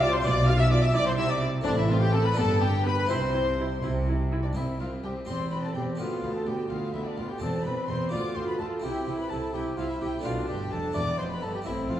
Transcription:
Already playing: double bass section C2, harpsichord C3 C4 F4 A4, cello section C3
0.00 viola section F4, violin section D5 D6, trumpet D5
0.12 violin section C5 C6, trumpet C5
0.21 double bass section B1, harpsichord B2 F4 G4, cello section B2, viola section F4, violin section D5 D6, trumpet D5
0.47 viola section F4, violin section F5 F6, trumpet F5
0.58 violin section E5 E6, trumpet E5
0.70 viola section F4, violin section D5 D6, trumpet D5
0.82 violin section E5 E6, trumpet E5
0.92 double bass section C2, cello section C3, harpsichord C3 E4, viola section E4, violin section D5 D6
0.96 trumpet D5
1.06 violin section C5 C6, trumpet C5
1.18 viola section E4, violin section E5 E6, trumpet E5
1.29 violin section D5 D6, trumpet D5
1.42 viola section E4
1.61 double bass section A1, harpsichord A3 C4 E4, violin section D4
1.65 harpsichord A2, cello section A2, viola section C4, trumpet D4, violin section D5
1.77 violin section E4 E5, trumpet E4
1.88 viola section C4, violin section F4 F5, trumpet F4
2.00 violin section G4 G5, trumpet G4
2.13 viola section C4, violin section A4 A5, trumpet A4
2.24 violin section B4 B5, trumpet B4
2.32 harpsichord B3 D4 G4
2.36 double bass section G1, harpsichord G2, cello section G2, viola section B3, violin section A4 A5, trumpet A4
2.61 viola section B3, violin section G4 G5, trumpet G4
2.86 viola section B3, violin section B4 B5, trumpet B4
3.05 harpsichord C4 E4 G4, violin section C6
3.10 double bass section C2, harpsichord C3, cello section C3, viola section E4, violin section C5, trumpet C5
3.34 viola section E4
3.59 viola section E4
3.82 double bass section C2, harpsichord C3, cello section C3, viola section E4
4.07 viola section E4
4.31 viola section E4
4.43 trumpet D4, violin section D5
4.53 double bass section C2, cello section C2, harpsichord C2 C4 G4, viola section C4, trumpet E4, violin section E5
4.79 double bass section C2, cello section C2, harpsichord C2, viola section C4, trumpet F4, violin section E5 F5
5.03 double bass section C2, harpsichord C2, cello section C2, viola section C4, trumpet G4, violin section E5 G5
5.25 double bass section E1, harpsichord E2 C4 G4, cello section E2, viola section C4, trumpet C5, violin section G5 C6
5.51 double bass section E1, cello section E2, harpsichord E2, viola section C4, trumpet B4, violin section G5 B5
5.62 trumpet A4, violin section A5
5.74 double bass section E1, cello section E2, harpsichord E2, viola section C4, trumpet G4, violin section G5
5.95 double bass section D2, harpsichord D2 B3 G4, cello section D2, viola section B3, violin section F5 G5
6.00 trumpet F4
6.22 cello section D2, double bass section D2, harpsichord D2, viola section B3, violin section G5
6.34 trumpet A4, violin section A5
6.45 cello section D2, double bass section D2, harpsichord D2, viola section B3, trumpet G4, violin section G5
6.69 double bass section D2, cello section D2, harpsichord D2, viola section B3, trumpet F4, violin section F5 G5
6.93 double bass section D2, cello section D2, harpsichord D2, viola section B3, trumpet E4, violin section E5 G5
7.06 trumpet D4, violin section D5
7.17 double bass section D2, cello section D2, harpsichord D2, viola section B3, trumpet F4, violin section F5 G5
7.29 trumpet G4, violin section G5
7.38 double bass section E1, cello section E2, harpsichord E2 C4 G4, viola section C4, trumpet A4, violin section G5 A5
7.64 double bass section E1, cello section E2, harpsichord E2, viola section C4, trumpet B4, violin section G5 B5
7.88 double bass section E1, harpsichord E2, cello section E2, viola section C4, trumpet C5, violin section G5 C6
8.09 double bass section D2, harpsichord D2 B3 F4, cello section D2, viola section F4, trumpet D5, violin section G5 D6
8.36 cello section D2, harpsichord D2, double bass section D2, viola section F4, trumpet C5, violin section G5 C6
8.48 trumpet B4, violin section B5
8.59 cello section D2, harpsichord D2, double bass section D2, viola section F4, trumpet A4, violin section G5 A5
8.80 double bass section C2, harpsichord C3 C4 E4, cello section C3, trumpet G4, violin section G5
8.84 viola section E4
9.07 double bass section C2, cello section C3, harpsichord C3, viola section E4, violin section G5
9.18 trumpet B4, violin section B5
9.30 double bass section C2, harpsichord C3, cello section C3, viola section E4, trumpet A4, violin section G5 A5
9.53 double bass section C2, cello section C3, harpsichord C3, viola section E4, trumpet G4, violin section G5
9.77 double bass section C2, harpsichord C3, cello section C3, viola section E4, trumpet F4, violin section F5 G5
9.89 trumpet E4, violin section E5
10.00 double bass section C2, harpsichord C3, cello section C3, viola section E4, trumpet G4, violin section G5
10.19 harpsichord A3 D4 F4
10.24 double bass section B1, harpsichord B2, cello section B2, viola section D4, trumpet F4, violin section F5 A5
10.48 double bass section G1, harpsichord G2, cello section G2, trumpet G4, violin section G5
10.71 double bass section F1, harpsichord F2, cello section F2, trumpet A4, violin section A5
10.92 double bass section E1, harpsichord E2 B3 E4, cello section E2, viola section B3, trumpet D5, violin section G5 D6
11.18 double bass section F1, harpsichord F2, cello section F2, trumpet C5, violin section C6
11.30 trumpet B4, violin section B5
11.41 double bass section G1, harpsichord G2, cello section G2, trumpet A4, violin section A5
11.54 trumpet G4, violin section G5
11.62 double bass section A1, harpsichord A2 C4 E4, cello section A2, violin section E5 G5
11.66 viola section C4, trumpet E4
11.88 double bass section F1, harpsichord F2, cello section F2, trumpet F4, violin section F5

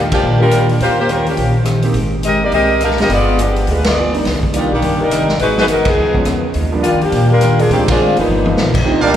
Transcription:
Already playing: upright bass D#2, steel-string acoustic guitar D#3 G3 D4 F4
0.12 saxophone section F3 A#3 D4 G4, kick, ride
0.22 upright bass A#2, steel-string acoustic guitar D#3 G3 D4 F4
0.39 saxophone section G3 D4 F4 A#4, grand piano A#3 D4 F4 G4
0.51 steel-string acoustic guitar D#3 G3 D4 F4, cross-stick, closed hi-hat
0.69 open hi-hat
0.80 upright bass D#2, steel-string acoustic guitar D#3 C#4 G4 C5, saxophone section A#3 F4 G4 C5, open hi-hat
0.99 saxophone section A#3 F4 G4 C5
1.08 steel-string acoustic guitar D#3 C#4 G4 C5, saxophone section G3 C#4 F4 A#4, closed hi-hat
1.26 saxophone section F3 A#3 C#4 G4, open hi-hat
1.37 upright bass A#1, steel-string acoustic guitar D#3 C#4 G4 C5, open hi-hat
1.63 steel-string acoustic guitar D#3 C#4 G4 C5, cross-stick, closed hi-hat
1.82 grand piano A#3 C4 D#4 G4, open hi-hat
1.93 upright bass G#1, steel-string acoustic guitar G#3 C4 G4 A#4, open hi-hat
2.23 steel-string acoustic guitar G#3 C4 G4 A#4, saxophone section C4 G4 A#4 D#5, closed hi-hat
2.42 saxophone section A#3 D#4 G4 D5
2.52 upright bass C2, steel-string acoustic guitar G#3 C4 G4 A#4, saxophone section C4 G4 A#4 D#5, open hi-hat
2.80 steel-string acoustic guitar G#3 C4 G4 A#4, saxophone section D4 G4 A#4 F5, cross-stick, closed hi-hat
2.91 snare
2.97 upright bass G#1, grand piano G#3 B3 D4 F4, saxophone section A#4, snare, open hi-hat
3.01 saxophone section C4 G4 D#5
3.09 upright bass G1, steel-string acoustic guitar G3 B3 F4 G#4, saxophone section B3 F4 G#4 D5, open hi-hat
3.38 saxophone section F3 B3 D4 G4, steel-string acoustic guitar G3 B3 F4 G#4, closed hi-hat
3.56 open hi-hat
3.67 upright bass D2, steel-string acoustic guitar G3 B3 F4 G#4, open hi-hat
3.71 saxophone section G#3 D4 F4 B4
3.84 saxophone section B3 F4 G#4 D5, snare, ride
3.96 steel-string acoustic guitar G3 B3 F4 G#4
4.13 grand piano G3 A#3 D4 D#4, open hi-hat
4.24 upright bass C2, steel-string acoustic guitar C3 D#3 A#3 D4, snare, open hi-hat
4.43 kick
4.52 steel-string acoustic guitar C3 D#3 A#3 D4, grand piano G3 A#3 D4 D#4, saxophone section G3 A#3 D4 F4, closed hi-hat
4.72 upright bass B1, saxophone section D#3 A#3 D4 G4
4.80 upright bass G1, steel-string acoustic guitar C3 D#3 A#3 D4, open hi-hat
5.01 saxophone section G3 D4 D#4 A#4
5.10 steel-string acoustic guitar C3 D#3 A#3 D4, cross-stick, closed hi-hat
5.29 snare
5.37 upright bass G#1, steel-string acoustic guitar G#2 F#3 B3 D#4, saxophone section D#4 B4, open hi-hat
5.41 saxophone section G#3 F#4
5.56 grand piano F#3 A#3 B3 D#4, saxophone section G#3 D#4 F#4, snare
5.60 saxophone section B4
5.66 steel-string acoustic guitar G#2 F#3 B3 D#4, closed hi-hat
5.71 saxophone section F#3 B3 D#4 A#4
5.85 upright bass D2, saxophone section F3 B3 D#4 G#4, kick, ride
5.95 upright bass C#2, steel-string acoustic guitar C#3 F3 B3 D#4
6.14 grand piano F3 G#3 B3 C#4, kick
6.24 upright bass E2, steel-string acoustic guitar C#3 F3 B3 D#4, cross-stick, closed hi-hat
6.54 upright bass D#2, steel-string acoustic guitar D#3 G3 D4 F4, open hi-hat
6.72 grand piano F3 G3 A#3 D4
6.83 steel-string acoustic guitar D#3 G3 D4 F4, saxophone section G3 A#3 D4 F4, closed hi-hat
6.93 upright bass F2
7.01 upright bass D2, saxophone section F3 A#3 D4 G4, open hi-hat
7.12 upright bass A#2, steel-string acoustic guitar D#3 G3 D4, open hi-hat
7.16 steel-string acoustic guitar F4
7.31 saxophone section G3 D4 F4 A#4
7.41 steel-string acoustic guitar D#3 G3 D4 F4, cross-stick, closed hi-hat
7.59 saxophone section F3 A#3 D4 G#4, open hi-hat
7.68 upright bass D2, steel-string acoustic guitar D3 G#3, saxophone section D#3 G#3 C4 G4, grand piano F3 G#3 C4 D4, open hi-hat
7.72 steel-string acoustic guitar C4 F4
7.88 saxophone section G#3 C4 D4 F4, kick, ride
7.99 steel-string acoustic guitar D3 G#3 C4 F4
8.15 upright bass F#1, grand piano F3 A#3 B3 F4, saxophone section F3 D#4, open hi-hat
8.19 saxophone section A#3 B3
8.27 upright bass G1, steel-string acoustic guitar G2 F3 B3 D#4
8.46 high tom
8.57 upright bass A#1, steel-string acoustic guitar G2 F3 B3 D#4, snare
8.74 kick, crash
8.84 upright bass C2, steel-string acoustic guitar C3 F3 A#3 D#4, trombone section D#3 G3 A#3 C4, grand piano G3 A#3 D4 D#4 F4
9.01 trombone section D#3 G3 A#3 D4, trumpet section D#4 A#4 D5 F5
9.13 steel-string acoustic guitar C3

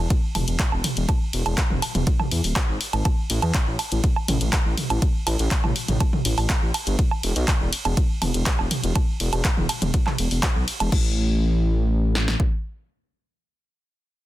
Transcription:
0.10 kick, closed hi-hat, ride
0.35 detuned saw bass E1, mid tom, open hi-hat, ride, low woodblock
0.48 detuned saw bass E1, closed hi-hat
0.59 kick, clap, closed hi-hat, ride
0.72 detuned saw bass E1, low woodblock
0.84 mid tom, open hi-hat, ride
0.97 detuned saw bass E1, closed hi-hat
1.09 kick, closed hi-hat, ride, low woodblock
1.33 detuned saw bass E1, open hi-hat, ride
1.46 detuned saw bass E1, closed hi-hat, low woodblock
1.58 kick, clap, closed hi-hat, ride
1.70 detuned saw bass E1, mid tom
1.82 open hi-hat, ride, low woodblock
1.95 detuned saw bass E1, closed hi-hat, mid tom
2.07 kick, closed hi-hat, ride
2.20 mid tom, low woodblock
2.31 detuned saw bass E2, open hi-hat, ride
2.44 detuned saw bass D1, open hi-hat
2.56 kick, clap, closed hi-hat, ride, low woodblock
2.69 detuned saw bass G#1
2.81 open hi-hat, ride
2.93 detuned saw bass G#1, closed hi-hat, low woodblock
3.05 kick, closed hi-hat, ride, low woodblock
3.30 detuned saw bass A1, open hi-hat, ride
3.42 detuned saw bass E2, closed hi-hat, low woodblock
3.54 kick, clap, closed hi-hat, ride
3.67 detuned saw bass A1
3.79 open hi-hat, ride, low woodblock
3.92 detuned saw bass A1, closed hi-hat
4.04 kick, closed hi-hat, ride
4.16 low woodblock
4.28 detuned saw bass A1, mid tom, open hi-hat, ride
4.41 detuned saw bass A1, closed hi-hat
4.53 kick, clap, closed hi-hat, ride, low woodblock
4.66 detuned saw bass A1
4.77 mid tom, open hi-hat, ride
4.90 detuned saw bass A1, closed hi-hat, low woodblock
5.02 kick, closed hi-hat, ride
5.27 detuned saw bass A1, open hi-hat, ride, low woodblock
5.39 detuned saw bass A1, closed hi-hat
5.51 kick, clap, closed hi-hat, ride
5.64 detuned saw bass A1, mid tom, low woodblock
5.76 open hi-hat, ride
5.88 detuned saw bass A1, closed hi-hat, mid tom
6.00 kick, closed hi-hat, ride, low woodblock
6.13 mid tom
6.25 detuned saw bass A1, open hi-hat, ride
6.38 detuned saw bass A1, open hi-hat, low woodblock
6.50 kick, clap, closed hi-hat, ride
6.62 detuned saw bass A1
6.74 open hi-hat, ride, low woodblock
6.87 detuned saw bass G1, closed hi-hat
6.99 kick, closed hi-hat, ride
7.11 low woodblock
7.23 detuned saw bass E1, open hi-hat, ride
7.36 detuned saw bass B1, closed hi-hat
7.48 kick, clap, closed hi-hat, ride, low woodblock
7.61 detuned saw bass E1
7.73 open hi-hat, ride
7.85 detuned saw bass E1, closed hi-hat, low woodblock
7.97 kick, closed hi-hat, ride
8.22 detuned saw bass E1, mid tom, open hi-hat, ride, low woodblock
8.34 detuned saw bass E1, closed hi-hat
8.46 kick, clap, closed hi-hat, ride
8.59 detuned saw bass E1, low woodblock
8.71 mid tom, open hi-hat, ride
8.84 detuned saw bass E1, closed hi-hat
8.95 kick, closed hi-hat, ride, low woodblock
9.20 detuned saw bass E1, open hi-hat, ride
9.33 detuned saw bass E1, closed hi-hat, low woodblock
9.45 kick, clap, closed hi-hat, ride
9.57 detuned saw bass E1, mid tom
9.69 open hi-hat, ride, low woodblock
9.82 detuned saw bass E1, closed hi-hat, mid tom
9.94 kick, closed hi-hat, ride
10.07 clap, mid tom, low woodblock
10.18 detuned saw bass E1, open hi-hat, ride
10.31 detuned saw bass E1, open hi-hat
10.43 kick, clap, closed hi-hat, ride, low woodblock
10.56 detuned saw bass B1
10.68 open hi-hat, ride
10.80 detuned saw bass E1, closed hi-hat, low woodblock
10.92 detuned saw bass A1, kick, crash
12.15 snare
12.28 snare
12.40 kick

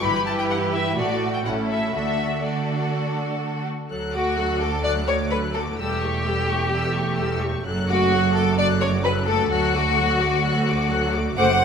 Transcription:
0.02 double bass section G1, cello section G2, viola section E3 E4, violin section G4 B4 B5
0.15 violin section B5
0.26 violin section A5
0.39 violin section G5
0.50 violin section F#5
0.73 violin section E5
0.97 double bass section A1, cello section A2, viola section A3 F#4, violin section F#4 A4 D5
1.34 violin section G5
1.45 double bass section A1, cello section A2, viola section A3 C#4, violin section E4 A4 F#5
1.70 violin section E5
1.94 double bass section D2, cello section D3, viola section A3 D4, violin section F#4 A4 E5
2.43 viola section A3 D4, violin section F#4 A4 D5
3.90 cello section D2, double bass section D2, viola section F#3 A4, violin section F#6
4.13 viola section A3 F#4, violin section F#4 D6
4.37 viola section F#3 A4, violin section F#6
4.61 viola section A3 F#4, violin section A4 D6
4.83 viola section F#3 A4, violin section D5 F#6
5.07 viola section A3 F#4, violin section C#5 D6
5.31 viola section F#3 A4, violin section B4 F#6
5.54 viola section A3 F#4, violin section A4 D6
5.77 double bass section E1, cello section E2, viola section G3 A4, violin section G4 E6
6.01 viola section A3 G4, violin section C#6
6.24 viola section G3 A4, violin section E6
6.48 viola section A3 G4, violin section C#6
6.72 viola section G3 A4, violin section E6
6.95 viola section A3 G4, violin section C#6
7.19 viola section G3 A4, violin section E6
7.42 viola section A3 G4, violin section C#6
7.64 double bass section F#1, cello section F#2, viola section F#3 A4, violin section F#6
7.88 viola section A3 F#4, violin section F#4 D6
8.12 viola section F#3 A4, violin section F#6
8.35 viola section A3 F#4, violin section A4 D6
8.58 viola section F#3 A4, violin section D5 F#6
8.82 viola section A3 F#4, violin section C#5 D6
9.04 viola section F#3 A4, violin section B4 F#6
9.28 viola section A3 F#4, violin section A4 D6
9.50 cello section D2, double bass section D2, viola section F#3 A4, violin section F#4 F#6
9.74 viola section A3 F#4, violin section D6
9.97 viola section F#3 A4, violin section F#6
10.21 viola section A3 F#4, violin section D6
10.44 viola section F#3 A4, violin section F#6
10.68 viola section A3 F#4, violin section D6
10.91 viola section F#3 A4, violin section F#6
11.14 viola section A3 F#4, violin section D6
11.36 double bass section F#1, cello section F#2, viola section A3 C5, violin section F#5 D6

